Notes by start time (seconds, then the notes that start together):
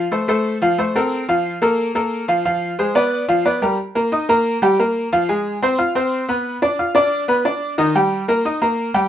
0.12 A3 A4 C5
0.28 A3 A4 C5
0.62 F3 F4 F5
0.78 A3 A4 C5
0.96 C4 A4 A#4
1.28 F3 F4 F5
1.62 A#3 A4 A#4
1.95 A#3 A4 A#4
2.28 F3 F4 F5
2.45 F3 F4 F5
2.79 G#3 G#4 C5
2.95 B3 B4 D5
3.28 F3 F4 F5
3.45 B3 B4 D5
3.62 G3 G4 A#4
3.95 A#3 A#4 A#5
4.12 D#4 D#5 D#6
4.29 A#3 A#4 A#5
4.62 G3 G4 G5
4.79 A#3 A#4 A#5
5.12 F3 F4 F5
5.29 G#3 G#4 G#5
5.63 C4 C5 C6
5.78 F4 F5 F6
5.95 C4 C5 C6
6.29 B3 B4 B5
6.62 D4 D5 D6
6.79 F4 F5 F6
6.95 D4 D5 D6
7.28 B3 B4 B5
7.45 D4 D5 D6
7.78 D#3 D#4 D#5
7.95 G3 G4 G5
8.28 A#3 A#4 A#5
8.45 D#4 D#5 D#6
8.62 A#3 A#4 A#5
8.94 G3 G4 G5